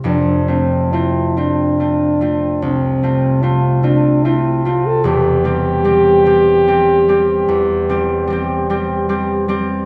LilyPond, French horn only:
\new Staff \with { instrumentName = "French horn" } { \time 12/8 \key f \major \tempo 4. = 49 d'8 c'8 e'8 d'4. c'4 f'8 d'8 e'8 f'16 a'16 | g'1~ g'4. r8 | }